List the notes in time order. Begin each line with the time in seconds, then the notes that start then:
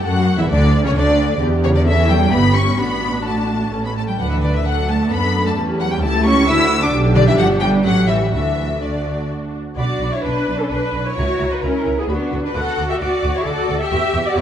0.03 F#2 F#3 F#4 F#5
0.37 E2 E3 E4 E5
0.48 D2 D3 D4 D5
0.83 C#2 C#3 C#4 C#5
0.94 D2 D3 D4 D5
1.40 E2 B3 G4
1.63 C#3 C#5
1.75 D3 D5
1.86 E3 C#4 A4 E5
2.09 G3 G5
2.31 G1 B3 G4 B5
2.54 C#4 C#6
2.78 A1 B3 D4 F#4 B5
3.25 A3 A5
3.72 A1 C#4 A4
3.84 B3 B5
3.95 A3 A5
4.07 G3 G5
4.18 D2 F#3 D4 B4 F#5
4.30 E3 E5
4.42 D3 D5
4.55 E3 E5
4.65 F#3 D4 A4 F#5
4.88 A3 A5
5.11 F#2 B3 B5
5.45 A3 A5
5.57 E2 C#4 G4
5.80 F#3 F#5
5.90 G3 G5
6.02 C#2 A3 E4 A5
6.25 C#4 C#6
6.46 D2 D4 E4 F#4 E6
6.80 D4 D6
6.93 B1 D4 G4
7.15 D3 D5
7.27 E3 E5
7.37 G1 F#3 F#5
7.60 G3 G5
7.84 A1 F#3 C#4 G4 F#5
8.07 E3 E5
8.32 D2 E3 D4 F#4 E5
8.81 D3 D4 F#4 D5
9.77 B1 D4 F#4 D5 B5
10.00 B1 B5
10.12 E4 C#5
10.24 B1 D4 B4 B5
10.48 B1 B5
10.58 C#4 A4
10.70 B1 D4 B4 B5
10.93 B1 B5
11.05 E4 C#5
11.17 C#2 F#4 A#5
11.40 C#2 A#5
11.51 D#4 B4
11.62 C#2 C#4 E4 A#4 A#5
11.86 C#2 A#5
11.99 B3 G#4
12.08 D2 B3 D4 F#4 B5
12.32 D2 B5
12.44 D4 B4
12.54 D2 F#4 A4 F#5 D6
12.77 D2 D6
12.89 G4 E5
13.00 D2 F#4 D5 D6
13.23 D2 D6
13.35 E4 C#5
13.45 D2 F#4 A4 D5 D6
13.68 D2 D6
13.80 G4 E5
13.91 E2 G4 C#6
14.13 E2 C#6
14.26 F#4 D5
14.35 E2 E4 C#5 C#6